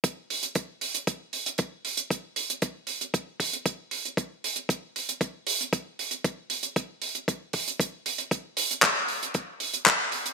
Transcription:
\new DrumStaff \with { instrumentName = "Drums" } \drummode { \time 4/4 \tempo 4 = 116 <hh bd>8 hho16 hh16 <hh bd>8 hho16 hh16 <hh bd>8 hho16 hh16 <hh bd>8 hho16 hh16 | <hh bd>8 hho16 hh16 <hh bd>8 hho16 hh16 <hh bd>8 <hho bd>16 hh16 <hh bd>8 hho16 hh16 | <hh bd>8 hho16 hh16 <hh bd>8 hho16 hh16 <hh bd>8 hho16 hh16 <hh bd>8 hho16 hh16 | <hh bd>8 hho16 hh16 <hh bd>8 hho16 hh16 <hh bd>8 <hho bd>16 hh16 <hh bd>8 hho16 hh16 |
<hh bd>8 hho16 hh16 <hc hh bd>8 hho16 hh16 <hh bd>8 hho16 hh16 <hc hh bd>8 hho16 hh16 | }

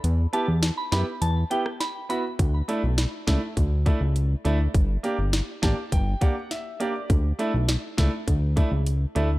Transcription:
<<
  \new Staff \with { instrumentName = "Synth bell" } { \time 4/4 \key d \major \tempo 4 = 102 r8 a''16 r8 b''16 b''16 r16 a''16 r16 g''16 r16 b''16 r16 b''16 r16 | r1 | r1 | r1 | }
  \new Staff \with { instrumentName = "Grand piano" } { \time 4/4 \key d \major r8 <b e' g'>8 r8 <b e' g'>8 r8 <b e' g'>8 r8 <b e' fis'>8 | r8 <a d' e'>8 r8 <a d' e'>8 r8 <a d' e'>8 r8 <a d' e'>8 | r8 <bes d' g'>8 r8 <bes d' g' a''>8 g''8 <bes d' g' fis''>8 e''8 <bes d' g' d''>8 | r8 <a d' e'>8 r8 <a d' e'>8 r8 <a d' e'>8 r8 <a d' e'>8 | }
  \new Staff \with { instrumentName = "Analog synth bass" } { \clef bass \time 4/4 \key d \major e,8 r16 e,8 r16 fis,16 r16 e,8 r4. | d,8 r16 b,,8 r16 cis,16 r16 d,8. cis,8. d,8 | g,,8 r16 g,,8 r16 a,,16 r16 g,,8 r4. | d,8 r16 b,,8 r16 cis,16 r16 d,8. cis,8. d,8 | }
  \new DrumStaff \with { instrumentName = "Drums" } \drummode { \time 4/4 hh8 hh8 <hh sn>8 <hh sn>8 hh8 hh16 ss16 <hh sn>8 hh8 | <hh bd>8 hh8 <hh sn>8 <hh bd sn>8 <hh bd>8 <hh bd>8 hh8 hh8 | <hh bd>8 hh8 <hh sn>8 <hh bd sn>8 <hh bd>8 <hh bd>8 <hh sn>8 hh8 | <hh bd>8 hh8 <hh sn>8 <hh bd sn>8 <hh bd>8 <hh bd>8 hh8 hh8 | }
>>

